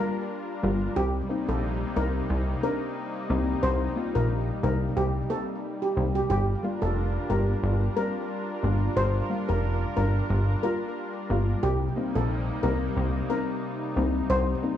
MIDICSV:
0, 0, Header, 1, 5, 480
1, 0, Start_track
1, 0, Tempo, 666667
1, 696, Time_signature, 4, 2, 24, 8
1, 10636, End_track
2, 0, Start_track
2, 0, Title_t, "Steel pan"
2, 0, Program_c, 0, 114
2, 694, Note_on_c, 0, 67, 100
2, 790, Note_off_c, 0, 67, 0
2, 1069, Note_on_c, 0, 69, 73
2, 1145, Note_off_c, 0, 69, 0
2, 1415, Note_on_c, 0, 70, 85
2, 1511, Note_off_c, 0, 70, 0
2, 1897, Note_on_c, 0, 70, 83
2, 1992, Note_off_c, 0, 70, 0
2, 2613, Note_on_c, 0, 72, 100
2, 2709, Note_off_c, 0, 72, 0
2, 2989, Note_on_c, 0, 70, 76
2, 3065, Note_off_c, 0, 70, 0
2, 3338, Note_on_c, 0, 70, 82
2, 3433, Note_off_c, 0, 70, 0
2, 3577, Note_on_c, 0, 67, 85
2, 3672, Note_off_c, 0, 67, 0
2, 3816, Note_on_c, 0, 69, 84
2, 3912, Note_off_c, 0, 69, 0
2, 4191, Note_on_c, 0, 67, 71
2, 4266, Note_off_c, 0, 67, 0
2, 4430, Note_on_c, 0, 67, 80
2, 4505, Note_off_c, 0, 67, 0
2, 4536, Note_on_c, 0, 67, 109
2, 4632, Note_off_c, 0, 67, 0
2, 4909, Note_on_c, 0, 69, 83
2, 4985, Note_off_c, 0, 69, 0
2, 5255, Note_on_c, 0, 70, 81
2, 5351, Note_off_c, 0, 70, 0
2, 5735, Note_on_c, 0, 70, 89
2, 5831, Note_off_c, 0, 70, 0
2, 6456, Note_on_c, 0, 72, 112
2, 6552, Note_off_c, 0, 72, 0
2, 6831, Note_on_c, 0, 70, 72
2, 6906, Note_off_c, 0, 70, 0
2, 7176, Note_on_c, 0, 70, 83
2, 7272, Note_off_c, 0, 70, 0
2, 7655, Note_on_c, 0, 70, 85
2, 7751, Note_off_c, 0, 70, 0
2, 8374, Note_on_c, 0, 67, 99
2, 8470, Note_off_c, 0, 67, 0
2, 8751, Note_on_c, 0, 69, 79
2, 8826, Note_off_c, 0, 69, 0
2, 9094, Note_on_c, 0, 70, 81
2, 9190, Note_off_c, 0, 70, 0
2, 9575, Note_on_c, 0, 70, 85
2, 9671, Note_off_c, 0, 70, 0
2, 10294, Note_on_c, 0, 72, 102
2, 10391, Note_off_c, 0, 72, 0
2, 10636, End_track
3, 0, Start_track
3, 0, Title_t, "Analog synth pad"
3, 0, Program_c, 1, 89
3, 0, Note_on_c, 1, 55, 83
3, 0, Note_on_c, 1, 62, 77
3, 0, Note_on_c, 1, 65, 73
3, 0, Note_on_c, 1, 70, 88
3, 668, Note_off_c, 1, 55, 0
3, 668, Note_off_c, 1, 62, 0
3, 668, Note_off_c, 1, 65, 0
3, 668, Note_off_c, 1, 70, 0
3, 696, Note_on_c, 1, 55, 78
3, 697, Note_on_c, 1, 48, 82
3, 697, Note_on_c, 1, 58, 80
3, 698, Note_on_c, 1, 63, 89
3, 4508, Note_off_c, 1, 48, 0
3, 4508, Note_off_c, 1, 58, 0
3, 4508, Note_off_c, 1, 63, 0
3, 4536, Note_on_c, 1, 62, 77
3, 4536, Note_on_c, 1, 65, 79
3, 4536, Note_on_c, 1, 70, 93
3, 8347, Note_off_c, 1, 62, 0
3, 8347, Note_off_c, 1, 65, 0
3, 8348, Note_off_c, 1, 55, 0
3, 8348, Note_off_c, 1, 70, 0
3, 8377, Note_on_c, 1, 55, 78
3, 8377, Note_on_c, 1, 58, 77
3, 8378, Note_on_c, 1, 48, 88
3, 8379, Note_on_c, 1, 63, 93
3, 10278, Note_off_c, 1, 58, 0
3, 10298, Note_on_c, 1, 60, 78
3, 10636, Note_off_c, 1, 48, 0
3, 10636, Note_off_c, 1, 55, 0
3, 10636, Note_off_c, 1, 60, 0
3, 10636, Note_off_c, 1, 63, 0
3, 10636, End_track
4, 0, Start_track
4, 0, Title_t, "Synth pluck"
4, 0, Program_c, 2, 84
4, 0, Note_on_c, 2, 55, 78
4, 0, Note_on_c, 2, 58, 72
4, 0, Note_on_c, 2, 65, 87
4, 82, Note_off_c, 2, 55, 0
4, 84, Note_off_c, 2, 58, 0
4, 87, Note_off_c, 2, 65, 0
4, 452, Note_on_c, 2, 55, 93
4, 457, Note_on_c, 2, 58, 85
4, 461, Note_on_c, 2, 65, 102
4, 562, Note_off_c, 2, 55, 0
4, 564, Note_off_c, 2, 58, 0
4, 566, Note_off_c, 2, 65, 0
4, 930, Note_on_c, 2, 58, 82
4, 936, Note_on_c, 2, 60, 75
4, 941, Note_on_c, 2, 63, 89
4, 1041, Note_off_c, 2, 58, 0
4, 1044, Note_off_c, 2, 60, 0
4, 1046, Note_off_c, 2, 63, 0
4, 1413, Note_on_c, 2, 58, 77
4, 1417, Note_on_c, 2, 60, 69
4, 1422, Note_on_c, 2, 63, 89
4, 1522, Note_off_c, 2, 58, 0
4, 1524, Note_off_c, 2, 60, 0
4, 1527, Note_off_c, 2, 63, 0
4, 1892, Note_on_c, 2, 58, 77
4, 1896, Note_on_c, 2, 60, 72
4, 1900, Note_on_c, 2, 62, 84
4, 2002, Note_off_c, 2, 58, 0
4, 2004, Note_off_c, 2, 60, 0
4, 2006, Note_off_c, 2, 62, 0
4, 2370, Note_on_c, 2, 58, 93
4, 2376, Note_on_c, 2, 60, 86
4, 2380, Note_on_c, 2, 63, 103
4, 2481, Note_off_c, 2, 58, 0
4, 2483, Note_off_c, 2, 60, 0
4, 2486, Note_off_c, 2, 63, 0
4, 2851, Note_on_c, 2, 58, 81
4, 2855, Note_on_c, 2, 60, 73
4, 2860, Note_on_c, 2, 65, 89
4, 2961, Note_off_c, 2, 58, 0
4, 2963, Note_off_c, 2, 60, 0
4, 2966, Note_off_c, 2, 65, 0
4, 3333, Note_on_c, 2, 58, 76
4, 3338, Note_on_c, 2, 60, 71
4, 3342, Note_on_c, 2, 63, 82
4, 3442, Note_off_c, 2, 58, 0
4, 3445, Note_off_c, 2, 60, 0
4, 3447, Note_off_c, 2, 63, 0
4, 3813, Note_on_c, 2, 58, 76
4, 3817, Note_on_c, 2, 60, 71
4, 3822, Note_on_c, 2, 63, 88
4, 3922, Note_off_c, 2, 58, 0
4, 3924, Note_off_c, 2, 60, 0
4, 3927, Note_off_c, 2, 63, 0
4, 4294, Note_on_c, 2, 58, 77
4, 4299, Note_on_c, 2, 60, 69
4, 4303, Note_on_c, 2, 63, 88
4, 4403, Note_off_c, 2, 58, 0
4, 4405, Note_off_c, 2, 60, 0
4, 4407, Note_off_c, 2, 63, 0
4, 4773, Note_on_c, 2, 55, 80
4, 4779, Note_on_c, 2, 58, 73
4, 4784, Note_on_c, 2, 65, 90
4, 4882, Note_off_c, 2, 55, 0
4, 4885, Note_off_c, 2, 58, 0
4, 4888, Note_off_c, 2, 65, 0
4, 5253, Note_on_c, 2, 55, 80
4, 5259, Note_on_c, 2, 58, 69
4, 5263, Note_on_c, 2, 67, 86
4, 5362, Note_off_c, 2, 55, 0
4, 5365, Note_off_c, 2, 58, 0
4, 5367, Note_off_c, 2, 67, 0
4, 5734, Note_on_c, 2, 55, 79
4, 5738, Note_on_c, 2, 58, 72
4, 5743, Note_on_c, 2, 60, 83
4, 5843, Note_off_c, 2, 55, 0
4, 5845, Note_off_c, 2, 58, 0
4, 5847, Note_off_c, 2, 60, 0
4, 6212, Note_on_c, 2, 55, 88
4, 6217, Note_on_c, 2, 58, 83
4, 6222, Note_on_c, 2, 62, 101
4, 6322, Note_off_c, 2, 55, 0
4, 6324, Note_off_c, 2, 58, 0
4, 6327, Note_off_c, 2, 62, 0
4, 6692, Note_on_c, 2, 55, 83
4, 6695, Note_on_c, 2, 58, 73
4, 6700, Note_on_c, 2, 65, 89
4, 6802, Note_off_c, 2, 55, 0
4, 6803, Note_off_c, 2, 58, 0
4, 6806, Note_off_c, 2, 65, 0
4, 7172, Note_on_c, 2, 55, 79
4, 7178, Note_on_c, 2, 58, 70
4, 7182, Note_on_c, 2, 62, 85
4, 7282, Note_off_c, 2, 55, 0
4, 7285, Note_off_c, 2, 58, 0
4, 7287, Note_off_c, 2, 62, 0
4, 7653, Note_on_c, 2, 55, 78
4, 7658, Note_on_c, 2, 58, 71
4, 7663, Note_on_c, 2, 65, 88
4, 7762, Note_off_c, 2, 55, 0
4, 7765, Note_off_c, 2, 58, 0
4, 7767, Note_off_c, 2, 65, 0
4, 8134, Note_on_c, 2, 55, 92
4, 8138, Note_on_c, 2, 58, 89
4, 8143, Note_on_c, 2, 65, 104
4, 8242, Note_off_c, 2, 55, 0
4, 8244, Note_off_c, 2, 58, 0
4, 8247, Note_off_c, 2, 65, 0
4, 8612, Note_on_c, 2, 58, 83
4, 8617, Note_on_c, 2, 60, 73
4, 8622, Note_on_c, 2, 63, 88
4, 8722, Note_off_c, 2, 58, 0
4, 8724, Note_off_c, 2, 60, 0
4, 8727, Note_off_c, 2, 63, 0
4, 9094, Note_on_c, 2, 58, 79
4, 9098, Note_on_c, 2, 60, 70
4, 9103, Note_on_c, 2, 63, 84
4, 9203, Note_off_c, 2, 58, 0
4, 9205, Note_off_c, 2, 60, 0
4, 9207, Note_off_c, 2, 63, 0
4, 9573, Note_on_c, 2, 58, 77
4, 9577, Note_on_c, 2, 60, 69
4, 9582, Note_on_c, 2, 63, 85
4, 9682, Note_off_c, 2, 58, 0
4, 9684, Note_off_c, 2, 60, 0
4, 9687, Note_off_c, 2, 63, 0
4, 10051, Note_on_c, 2, 58, 92
4, 10055, Note_on_c, 2, 60, 86
4, 10060, Note_on_c, 2, 63, 102
4, 10161, Note_off_c, 2, 58, 0
4, 10163, Note_off_c, 2, 60, 0
4, 10166, Note_off_c, 2, 63, 0
4, 10531, Note_on_c, 2, 58, 82
4, 10536, Note_on_c, 2, 60, 73
4, 10540, Note_on_c, 2, 63, 88
4, 10636, Note_off_c, 2, 58, 0
4, 10636, Note_off_c, 2, 60, 0
4, 10636, Note_off_c, 2, 63, 0
4, 10636, End_track
5, 0, Start_track
5, 0, Title_t, "Analog synth bass"
5, 0, Program_c, 3, 38
5, 457, Note_on_c, 3, 31, 97
5, 639, Note_off_c, 3, 31, 0
5, 696, Note_on_c, 3, 36, 103
5, 879, Note_off_c, 3, 36, 0
5, 1070, Note_on_c, 3, 34, 92
5, 1333, Note_off_c, 3, 34, 0
5, 1416, Note_on_c, 3, 36, 96
5, 1599, Note_off_c, 3, 36, 0
5, 1656, Note_on_c, 3, 36, 108
5, 1839, Note_off_c, 3, 36, 0
5, 2376, Note_on_c, 3, 36, 97
5, 2558, Note_off_c, 3, 36, 0
5, 2615, Note_on_c, 3, 36, 106
5, 2798, Note_off_c, 3, 36, 0
5, 2992, Note_on_c, 3, 34, 94
5, 3254, Note_off_c, 3, 34, 0
5, 3336, Note_on_c, 3, 36, 96
5, 3519, Note_off_c, 3, 36, 0
5, 3576, Note_on_c, 3, 36, 100
5, 3759, Note_off_c, 3, 36, 0
5, 4297, Note_on_c, 3, 36, 94
5, 4479, Note_off_c, 3, 36, 0
5, 4536, Note_on_c, 3, 31, 106
5, 4719, Note_off_c, 3, 31, 0
5, 4911, Note_on_c, 3, 29, 98
5, 5173, Note_off_c, 3, 29, 0
5, 5255, Note_on_c, 3, 31, 91
5, 5438, Note_off_c, 3, 31, 0
5, 5495, Note_on_c, 3, 31, 104
5, 5678, Note_off_c, 3, 31, 0
5, 6216, Note_on_c, 3, 31, 95
5, 6399, Note_off_c, 3, 31, 0
5, 6456, Note_on_c, 3, 31, 110
5, 6638, Note_off_c, 3, 31, 0
5, 6832, Note_on_c, 3, 29, 98
5, 7094, Note_off_c, 3, 29, 0
5, 7177, Note_on_c, 3, 31, 89
5, 7359, Note_off_c, 3, 31, 0
5, 7418, Note_on_c, 3, 31, 107
5, 7600, Note_off_c, 3, 31, 0
5, 8136, Note_on_c, 3, 31, 96
5, 8319, Note_off_c, 3, 31, 0
5, 8376, Note_on_c, 3, 36, 102
5, 8559, Note_off_c, 3, 36, 0
5, 8752, Note_on_c, 3, 34, 92
5, 9014, Note_off_c, 3, 34, 0
5, 9097, Note_on_c, 3, 36, 97
5, 9279, Note_off_c, 3, 36, 0
5, 9336, Note_on_c, 3, 36, 104
5, 9519, Note_off_c, 3, 36, 0
5, 10056, Note_on_c, 3, 36, 96
5, 10238, Note_off_c, 3, 36, 0
5, 10295, Note_on_c, 3, 36, 106
5, 10478, Note_off_c, 3, 36, 0
5, 10636, End_track
0, 0, End_of_file